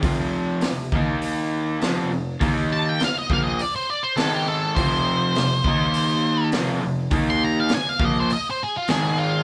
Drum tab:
HH |o-o-o-o-|o-o-o-o-|o-o-o-o-|o-o-o-o-|
SD |--o---o-|--o---o-|--o---o-|--o---o-|
BD |o--o----|o--o----|o--o----|o--o----|